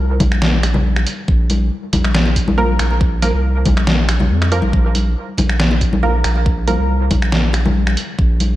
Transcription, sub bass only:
0.00 0.19 C2 medium
0.20 1.05 A#1 loud
1.28 1.70 A#1 loud
1.93 2.78 A#1 loud
2.79 3.32 A#1 medium
3.34 3.64 C2 medium
3.65 4.32 A#1 loud
4.30 4.62 F2 medium
4.63 4.73 A#1 medium
4.73 5.15 A#1 loud
5.38 6.23 A#1 loud
6.24 6.78 A#1 medium
6.79 7.10 C2 medium
7.11 7.96 A#1 loud
8.19 8.56 A#1 loud

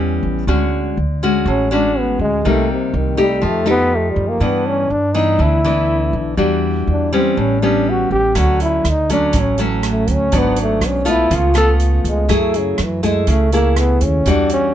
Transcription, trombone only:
1.49 1.73 C#4 medium
1.72 2.00 D4 loud
1.99 2.21 B3 medium
2.21 2.49 G#3 medium
2.48 2.70 A3 medium
2.72 2.98 C3 medium
2.97 3.20 D#3 medium
3.21 3.48 G3 medium
3.47 3.69 A3 medium
3.70 3.97 B3 loud
3.95 4.12 A3 medium
4.11 4.30 G3 medium
4.28 4.45 A#3 medium
4.44 4.69 B3 medium
4.68 4.93 C#4 medium
4.91 5.16 D4 medium
5.15 5.44 D#4 medium
5.42 6.39 E4 medium
6.92 7.13 D4 medium
7.14 7.42 C4 medium
7.40 7.63 C#4 medium
7.62 7.91 D4 medium
7.90 8.12 F#4 medium
8.12 8.40 G4 loud
8.39 8.62 F#4 medium
8.62 8.92 E4 medium
8.90 9.12 D#4 medium
9.13 9.42 D4 medium
9.40 9.62 C#4 medium
9.63 9.79 E3 soft
9.90 10.13 A3 medium
10.12 10.40 C#4 loud
10.38 10.60 B3 medium
10.62 10.89 A3 medium
10.88 11.12 C#4 medium
11.10 11.36 E4 medium
11.35 11.57 F4 medium
11.58 11.72 A4 loud
12.09 12.36 G#3 medium
12.34 12.59 A3 loud
12.58 12.85 C#3 medium
12.84 13.04 E3 medium
13.04 13.31 G#3 medium
13.30 13.53 A3 medium
13.53 13.80 A#3 medium
13.79 14.06 B3 medium
14.04 14.32 C#4 medium
14.30 14.53 D4 medium
14.54 14.74 C#4 medium

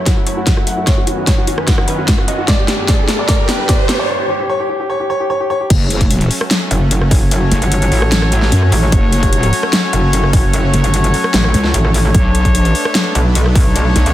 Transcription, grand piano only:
0.06 0.15 F#4 medium
0.17 0.26 F#4 medium
0.27 0.36 C#5 medium
0.37 0.45 F#4 medium
0.47 0.56 F#4 medium
0.57 0.66 F#4 medium
0.67 0.76 F#5 medium
0.77 0.86 F#4 medium
0.87 0.96 C#5 loud
0.97 1.06 F#4 medium
1.07 1.16 F#4 medium
1.18 1.26 F#4 medium
1.27 1.37 C#5 medium
1.38 1.46 F#4 medium
1.47 1.57 F#4 medium
1.58 1.67 B4 medium
1.68 1.76 F#4 medium
1.78 1.87 F#4 medium
1.88 1.97 B4 medium
1.98 2.06 F#4 medium
2.08 2.17 F#4 medium
2.18 2.27 F#4 medium
2.28 2.37 D#5 medium
2.38 2.47 F#4 medium
2.48 2.57 D5 medium
2.58 2.67 G4 medium
2.68 2.77 G4 medium
2.79 2.87 G4 medium
2.88 2.98 D5 medium
2.99 3.07 G4 medium
3.08 3.18 G4 medium
3.19 3.27 D5 medium
3.29 3.38 D5 loud
3.39 3.47 G4 medium
3.49 3.57 G4 medium
3.59 3.68 G4 medium
3.69 3.78 D5 medium
3.79 3.87 G4 medium
3.89 3.98 G4 medium
3.99 4.08 D5 medium
4.09 4.18 C#5 loud
4.20 4.28 G4 medium
4.29 4.38 G4 medium
4.40 4.48 G4 medium
4.49 4.59 C#5 loud
4.60 4.68 G4 medium
4.69 4.78 G4 medium
4.80 4.88 G4 medium
4.90 4.99 C#5 loud
5.00 5.08 G4 medium
5.10 5.19 C#5 loud
5.20 5.28 G4 medium
5.30 5.39 C#5 loud
5.40 5.49 G4 medium
5.50 5.59 C#5 loud
5.60 5.69 G4 medium

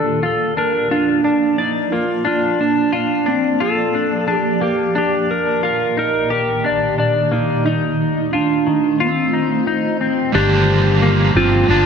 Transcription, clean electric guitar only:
0.00 0.23 D4 medium
0.23 0.57 F4 medium
0.57 0.91 D4 medium
0.91 1.24 F4 medium
1.24 1.58 D4 medium
1.58 1.92 D5 medium
1.92 2.26 A#3 medium
2.25 2.93 D4 medium
2.93 3.27 F4 medium
3.26 3.60 D4 medium
3.60 3.94 F4 medium
3.94 4.26 D4 medium
4.28 4.62 D4 medium
4.61 4.95 A#3 medium
4.95 5.63 D4 medium
5.63 5.97 F4 medium
5.97 6.31 D#4 medium
6.30 6.64 G4 medium
6.64 6.97 D4 medium
6.98 7.32 D4 medium
7.32 7.65 A#3 medium
7.66 8.33 D#4 medium
8.33 8.67 F4 medium
8.67 9.00 D#3 medium
9.00 9.34 F4 medium
9.33 9.66 D#4 medium
9.67 10.00 D#4 medium
10.01 10.34 C4 medium
10.35 11.02 D4 loud
11.02 11.36 A#3 medium
11.36 11.70 C4 medium
11.70 11.86 D4 loud

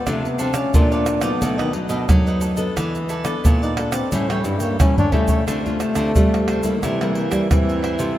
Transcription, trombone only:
0.08 0.27 A3 medium
0.25 0.41 B3 medium
0.40 0.57 C4 medium
0.55 0.77 C#4 loud
0.76 1.25 D4 loud
1.23 1.45 B3 medium
1.44 1.60 A3 loud
1.60 1.70 D#3 medium
3.63 3.78 D#4 medium
3.76 3.94 D4 medium
3.92 4.13 C4 medium
4.12 4.31 C#4 loud
4.30 4.46 E3 medium
4.44 4.62 G3 medium
4.60 4.79 A#3 medium
4.80 4.96 C#4 loud
4.98 5.14 D4 loud
5.13 5.47 A3 loud
5.47 6.79 A3 loud
6.83 7.03 G3 medium
7.02 7.16 A3 medium
7.16 7.53 A#3 medium
7.51 8.02 C4 medium

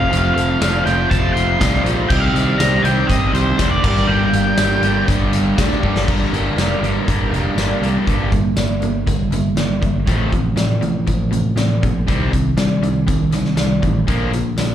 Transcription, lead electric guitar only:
0.00 0.33 F5 medium
0.34 0.85 F5 loud
0.85 1.11 G5 medium
1.10 1.33 A5 loud
1.33 1.80 C6 loud
2.09 2.20 G5 medium
2.20 2.56 F5 medium
2.58 2.84 A#5 loud
2.82 3.09 G5 medium
3.07 3.33 D#5 medium
3.34 3.70 C5 medium
3.71 4.09 D5 medium
4.07 5.03 G5 medium

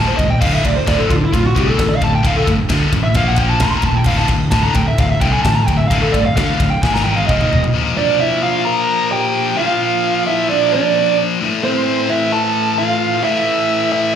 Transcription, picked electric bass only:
0.00 0.10 D#1 medium
0.19 0.33 C#2 medium
0.42 0.56 D1 medium
0.65 0.80 D1 medium
0.88 1.02 D1 medium
1.10 1.25 D1 medium
1.33 1.48 D1 medium
1.56 1.71 C2 medium
1.79 1.93 A1 medium
2.01 2.16 D1 loud
2.24 2.39 D1 loud
2.47 2.62 G1 medium
2.70 2.84 D2 medium
2.93 3.07 A1 medium
3.15 3.62 A#1 medium
3.61 3.76 D#1 loud
3.83 3.98 D#1 loud
4.06 4.21 D1 loud
4.29 4.44 D1 medium
4.52 4.67 D1 medium
4.76 4.90 D1 medium
4.99 5.13 D1 loud
5.21 5.36 C2 medium
5.45 5.59 A1 medium
5.68 5.82 D1 loud
5.90 6.05 D1 loud
6.14 6.28 G1 medium
6.37 6.51 D2 medium
6.60 6.74 D1 medium
6.83 7.12 G#1 loud
7.29 7.43 D#1 loud
7.53 7.67 D#1 loud

